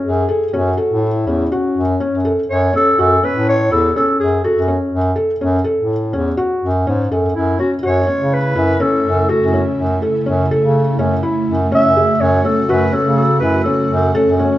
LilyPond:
<<
  \new Staff \with { instrumentName = "Clarinet" } { \time 5/4 \key fis \minor \tempo 4 = 124 r1 r4 | cis''8 a'8 a'8 b'8 cis''8 a'8 a'8 gis'8 fis'8. r16 | r1 r4 | e'8 fis'8 cis''4 b'4 a'4 fis'8. r16 |
r1 e''4 | cis''8 a'8 b'8 a'8 a'8 b'8 a'4 r4 | }
  \new Staff \with { instrumentName = "Felt piano" } { \time 5/4 \key fis \minor r8 a'8 cis'8 a'4 cis'8 fis'4 cis'8 a'8 | r8 cis'8 fis'8 cis'4 e'8 cis'4 a'8 cis'8~ | cis'8 a'8 cis'8 a'4 cis'8 fis'4 cis'8 a'8 | r8 cis'8 fis'8 cis'4 e'8 cis'4 a'8 cis'8~ |
cis'8 a'8 cis'8 a'4 cis'8 e'4 cis'8 gis'8 | r8 cis'8 fis'8 cis'4 e'8 cis'4 a'8 cis'8 | }
  \new Staff \with { instrumentName = "French horn" } { \time 5/4 \key fis \minor gis'4 fis'4 e'4 cis'4.~ cis'16 r16 | r1 r4 | r1 r4 | r1 r4 |
r1 r4 | r1 cis'8 cis'8 | }
  \new Staff \with { instrumentName = "Ambient pad" } { \time 5/4 \key fis \minor << { r1 r4 | r1 r4 | r1 r4 | e'1~ e'4~ |
e'2~ e'8 fis'2~ fis'8~ | fis'1~ fis'4 | } \\ { r1 r4 | r1 r4 | r1 r4 | <cis a>1~ <cis a>4~ |
<cis a>1~ <cis a>4~ | <cis a>1~ <cis a>4 | } >> }
  \new Staff \with { instrumentName = "Bass clarinet" } { \clef bass \time 5/4 \key fis \minor fis,8 r8 fis,8 r16 a,8. e,8 r8 fis,8 r16 fis,8 r16 | fis,8 r8 fis,8 r16 a,8. e,8 r8 fis,8 r16 fis,8 r16 | fis,8 r8 fis,8 r16 a,8. e,8 r8 fis,8 gis,8 fis,8 | fis,8 r8 fis,8 r16 cis8. fis,8 r8 fis,8 r16 fis,8 r16 |
fis,8 r8 fis,8 r16 cis8. fis,8 r8 fis,8 r16 fis,8 r16 | fis,8 r8 fis,8 r16 cis8. fis,8 r8 fis,8 r16 fis,8 r16 | }
>>